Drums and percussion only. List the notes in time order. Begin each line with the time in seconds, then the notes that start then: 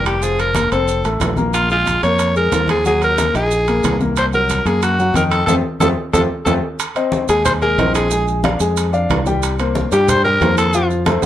0.06 high timbale, maracas
0.22 high conga, maracas
0.39 high conga, high timbale, maracas
0.55 high conga, high timbale, maracas
0.72 high timbale, maracas
0.87 high conga, maracas
1.04 high conga, high timbale, maracas
1.20 high conga, high timbale, low timbale, maracas
1.36 high conga, maracas
1.53 high conga, high timbale, maracas
1.70 high conga, maracas
1.86 high conga, high timbale, maracas
2.02 high conga, high timbale, maracas
2.19 high conga, high timbale, maracas
2.35 high conga, maracas
2.52 high conga, high timbale, low timbale, maracas
2.68 high conga, high timbale, maracas
2.85 high conga, maracas
3.01 high conga, high timbale, maracas
3.18 high conga, high timbale, maracas
3.35 high timbale, maracas
3.51 high conga, maracas
3.67 high conga, high timbale, maracas
3.84 high conga, high timbale, low timbale, maracas
4.00 high conga, maracas
4.16 high conga, high timbale, maracas
4.33 maracas
4.49 high conga, high timbale, maracas
4.66 high conga, high timbale, maracas
4.82 high conga, high timbale, maracas
4.99 high conga, maracas
5.14 high conga, high timbale, maracas
5.32 high timbale, maracas
5.47 high conga, high timbale, maracas
5.80 high conga, high timbale, maracas
6.14 high conga, high timbale, maracas
6.46 high conga, high timbale, maracas
6.79 high conga, high timbale, maracas
6.95 high conga, high timbale, maracas
7.12 high conga, low timbale, maracas
7.28 high timbale, maracas
7.45 high conga, low conga, high timbale, maracas
7.62 high conga, maracas
7.78 high conga, high timbale, low timbale, maracas
7.95 high timbale, maracas
8.11 high conga, maracas
8.28 high conga, maracas
8.44 high conga, high timbale, low timbale, maracas
8.60 maracas
8.77 high conga, high timbale, maracas
8.93 high conga, maracas
9.10 high conga, high timbale, low timbale, maracas
9.26 high conga, maracas
9.43 high conga, high timbale, maracas
9.59 high conga, high timbale, maracas
9.75 high conga, low timbale, maracas
9.92 high timbale, maracas
10.08 high conga, low conga, high timbale, maracas
10.25 high conga, maracas
10.41 high conga, high timbale, low timbale, maracas
10.58 high timbale, maracas
10.73 high conga, maracas
10.90 high conga, maracas
11.06 high conga, high timbale, low timbale, maracas
11.22 high timbale, maracas